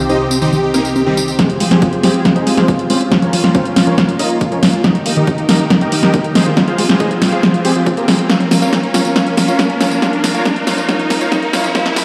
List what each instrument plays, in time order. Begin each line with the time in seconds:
Already playing: analog synth bass C2, analog synth pad C3 C4 D#4 G4
0.09 synth arpeggio sound C4, supersaw synth D#4 G4 C5 D#5, tambourine
0.20 supersaw synth G4
0.31 synth arpeggio sound C4, supersaw synth G4, tambourine
0.42 synth arpeggio sound D#3, supersaw synth C4 D#4 G4 C5, tambourine
0.52 synth arpeggio sound D#3, supersaw synth G4, tambourine
0.63 supersaw synth G4
0.74 supersaw synth A#3 D#4 G4 A#4, synth arpeggio sound C4, tambourine
0.85 supersaw synth G4, tambourine
0.96 synth arpeggio sound C4, supersaw synth G4, tambourine
1.06 synth arpeggio sound D#3, supersaw synth G3 C4 D#4 G4
1.17 synth arpeggio sound D#3, supersaw synth G4, tambourine
1.28 supersaw synth G4, tambourine
1.39 analog synth pad F3 C4 G4 G#4, synth arpeggio sound F3, supersaw synth C4 G4 G#4 C5, kick, snare, closed hi-hat, riser
1.50 analog synth bass F2, supersaw synth F4, closed hi-hat
1.60 analog synth bass F2, synth arpeggio sound G#3, supersaw synth F4, open hi-hat
1.71 supersaw synth C4 G4 G#4 C5, snare, closed hi-hat
1.82 synth arpeggio sound G#3, supersaw synth F4, kick, closed hi-hat
1.93 analog synth bass F2, synth arpeggio sound F3, supersaw synth F4, closed hi-hat
2.03 analog synth bass D#2, synth arpeggio sound F3, supersaw synth C4 G4 G#4 C5, snare, open hi-hat
2.14 analog synth bass F2, supersaw synth F4, closed hi-hat
2.25 synth arpeggio sound G#3, supersaw synth F4, kick, snare, closed hi-hat
2.36 analog synth bass F2, supersaw synth D#4 G#4 C5 D#5, closed hi-hat
2.47 analog synth bass F2, synth arpeggio sound G#3, supersaw synth F4, open hi-hat
2.57 analog synth bass F2, synth arpeggio sound F3, supersaw synth F4 G#4 C5 F5, snare, closed hi-hat
2.68 synth arpeggio sound F3, supersaw synth F4, kick, closed hi-hat
2.79 analog synth bass F2, supersaw synth F4, closed hi-hat
2.90 analog synth bass F2, synth arpeggio sound G#3, supersaw synth C4 C#4 F4 C5, open hi-hat
3.01 analog synth bass F2, supersaw synth F4, closed hi-hat
3.12 analog synth pad A#3 C#4 F4, synth arpeggio sound C#4, supersaw synth F4, kick, snare, closed hi-hat
3.22 analog synth bass A#1, synth arpeggio sound F3, supersaw synth C#4 F4 A#4 C#5, closed hi-hat
3.33 analog synth bass A#1, synth arpeggio sound F3, supersaw synth F4, open hi-hat
3.44 analog synth bass A#2, supersaw synth F4, snare
3.55 supersaw synth C4 C#4 F4 C5, synth arpeggio sound C#4, kick, closed hi-hat
3.65 analog synth bass A#1, supersaw synth F4, closed hi-hat
3.76 analog synth bass G#1, synth arpeggio sound C#4, supersaw synth F4, snare, open hi-hat
3.87 analog synth bass A#1, synth arpeggio sound F3, supersaw synth C#4 F4 A#4 C#5, closed hi-hat
3.98 synth arpeggio sound F3, supersaw synth F4, kick, snare, closed hi-hat
4.09 analog synth bass A#1, supersaw synth F4, closed hi-hat
4.19 analog synth bass A#1, synth arpeggio sound C#4, supersaw synth D#4 F4 A#4 D#5, open hi-hat
4.30 analog synth bass A#1, supersaw synth F4, closed hi-hat
4.41 synth arpeggio sound C#4, supersaw synth F4, kick, closed hi-hat
4.52 analog synth bass A#1, synth arpeggio sound F3, supersaw synth C#4 F4 A#4 C#5, closed hi-hat
4.63 analog synth bass A#1, synth arpeggio sound F3, supersaw synth F4, snare, open hi-hat
4.73 analog synth bass A#1, supersaw synth F4, closed hi-hat
4.84 analog synth pad D#3 D#4 G4 A#4, synth arpeggio sound A#3, supersaw synth D#4 G4 A#4 D#5, kick, snare, closed hi-hat
4.95 analog synth bass D#2, supersaw synth D#4, closed hi-hat
5.06 analog synth bass D#2, synth arpeggio sound A#3, supersaw synth D#4, open hi-hat
5.16 synth arpeggio sound D#3, supersaw synth D#4 G4 A#4 D#5, closed hi-hat
5.27 synth arpeggio sound D#3, supersaw synth D#4, kick, closed hi-hat
5.38 analog synth bass D#2, supersaw synth D#4, closed hi-hat
5.49 analog synth bass C#2, synth arpeggio sound A#3, supersaw synth D#4 G4 A#4 D#5, snare, open hi-hat
5.60 analog synth bass D#2, supersaw synth D#4, closed hi-hat
5.70 synth arpeggio sound A#3, supersaw synth D#4, kick, snare, closed hi-hat
5.81 analog synth bass D#2, synth arpeggio sound D#3, supersaw synth G4 A#4 D#5 G5, closed hi-hat
5.92 analog synth bass D#2, synth arpeggio sound D#3, supersaw synth D#4, open hi-hat
6.03 analog synth bass D#2, supersaw synth G4 A#4 D#5 G5, snare, closed hi-hat
6.14 synth arpeggio sound A#3, supersaw synth D#4, kick, closed hi-hat
6.24 analog synth bass D#2, supersaw synth D#4, closed hi-hat
6.35 analog synth bass D#2, synth arpeggio sound A#3, supersaw synth D#4 G#4 C5 D#5, snare, open hi-hat
6.46 analog synth bass D#2, synth arpeggio sound D#3, supersaw synth F4, closed hi-hat
6.57 synth arpeggio sound F3, analog synth pad F3 C4 G#4, supersaw synth F4, kick, snare, closed hi-hat
6.68 analog synth bass F2, supersaw synth F4 G#4 C5 F5, closed hi-hat
6.78 analog synth bass F2, synth arpeggio sound G#3, supersaw synth F4, open hi-hat
6.89 supersaw synth F4, snare
7.00 synth arpeggio sound G#3, supersaw synth D#4 G#4 C5 D#5, kick, closed hi-hat
7.11 analog synth bass F2, synth arpeggio sound F3, supersaw synth F4, closed hi-hat
7.22 analog synth bass D#2, synth arpeggio sound F3, supersaw synth F4, snare, open hi-hat
7.32 analog synth bass F2, supersaw synth F4 G#4 C5 F5, closed hi-hat
7.43 synth arpeggio sound G#3, supersaw synth F4, kick, snare, closed hi-hat
7.54 analog synth bass G2, supersaw synth F4, closed hi-hat
7.65 analog synth bass F2, synth arpeggio sound G#3, supersaw synth C4 G4 G#4 C5, open hi-hat
7.76 analog synth bass F2, synth arpeggio sound F3, supersaw synth F4
7.86 synth arpeggio sound F3, supersaw synth F4, kick, closed hi-hat
7.97 analog synth bass F2, supersaw synth A#3 F4 G4 A#4, closed hi-hat
8.08 analog synth bass F2, synth arpeggio sound G#3, supersaw synth F4, snare, open hi-hat
8.19 analog synth bass F2, supersaw synth F4, closed hi-hat
8.29 analog synth pad A#3 C#4 F4, synth arpeggio sound C#4, supersaw synth F4 A#4 C#5 F5, kick, snare, closed hi-hat, tambourine
8.40 analog synth bass A#1, synth arpeggio sound F3, supersaw synth A#4, closed hi-hat
8.51 analog synth bass A#1, synth arpeggio sound F3, supersaw synth A#4, snare, open hi-hat, tambourine
8.62 analog synth bass A#2, supersaw synth F4 A#4 C#5 F5, closed hi-hat, tambourine
8.73 synth arpeggio sound C#4, supersaw synth A#4, kick, snare, closed hi-hat, tambourine
8.83 analog synth bass A#1, supersaw synth A#4, closed hi-hat
8.94 analog synth bass G#1, synth arpeggio sound C#4, supersaw synth F4 A#4 C#5 F5, snare, open hi-hat, tambourine
9.05 analog synth bass A#1, synth arpeggio sound F3, supersaw synth A#4, closed hi-hat, tambourine
9.16 synth arpeggio sound C#4, supersaw synth F4 A#4 C#5 F5, kick, snare, closed hi-hat, tambourine
9.27 analog synth bass A#1, synth arpeggio sound F3, supersaw synth A#4, closed hi-hat
9.37 analog synth bass A#1, synth arpeggio sound F3, supersaw synth A#4, snare, open hi-hat, tambourine
9.48 analog synth bass A#1, supersaw synth F4 A#4 C#5 F5, closed hi-hat, tambourine
9.59 synth arpeggio sound C#4, supersaw synth A#4, kick, snare, closed hi-hat, tambourine
9.70 analog synth bass A#1, supersaw synth A#4, closed hi-hat
9.81 analog synth bass A#1, synth arpeggio sound C#4, supersaw synth F4 A#4 C#5 F5, snare, open hi-hat, tambourine
9.91 analog synth bass A#1, synth arpeggio sound F3, supersaw synth A#4, closed hi-hat, tambourine
10.02 synth arpeggio sound C#4, supersaw synth F4 A#4 C#5 F5, kick, snare, closed hi-hat, tambourine
10.13 analog synth bass A#1, synth arpeggio sound F3, supersaw synth A#4, closed hi-hat
10.24 analog synth bass A#1, synth arpeggio sound F3, supersaw synth A#4, snare, open hi-hat, tambourine
10.34 analog synth bass A#2, supersaw synth F4 A#4 C#5 F5, closed hi-hat, tambourine
10.45 synth arpeggio sound C#4, supersaw synth A#4, kick, snare, closed hi-hat, tambourine
10.56 analog synth bass A#1, supersaw synth A#4, closed hi-hat
10.67 analog synth bass G#1, synth arpeggio sound C#4, supersaw synth F4 A#4 C#5 F5, snare, open hi-hat, tambourine
10.78 analog synth bass A#1, synth arpeggio sound F3, supersaw synth A#4, closed hi-hat, tambourine
10.89 synth arpeggio sound C#4, supersaw synth F4 A#4 C#5 F5, kick, snare, closed hi-hat, tambourine
10.99 analog synth bass A#1, synth arpeggio sound F3, supersaw synth A#4, closed hi-hat
11.10 analog synth bass A#1, synth arpeggio sound F3, supersaw synth A#4, snare, open hi-hat, tambourine
11.21 analog synth bass A#1, supersaw synth F4 A#4 C#5 F5, closed hi-hat, tambourine
11.32 synth arpeggio sound C#4, supersaw synth A#4, kick, snare, closed hi-hat, tambourine
11.43 analog synth bass A#1, supersaw synth A#4, closed hi-hat
11.53 analog synth bass A#1, synth arpeggio sound C#4, supersaw synth F4 A#4 C#5 F5, snare, open hi-hat, tambourine
11.64 analog synth bass A#1, synth arpeggio sound F3, supersaw synth A#4, closed hi-hat, tambourine
11.75 analog synth pad C3 C4 D#4 G4, synth arpeggio sound C4, supersaw synth F4 A#4 C5 F5, kick, snare, closed hi-hat, tambourine
11.86 analog synth bass C2, synth arpeggio sound F3, supersaw synth A#4, snare, closed hi-hat
11.96 analog synth bass C2, synth arpeggio sound F3, supersaw synth A#4, snare, open hi-hat, tambourine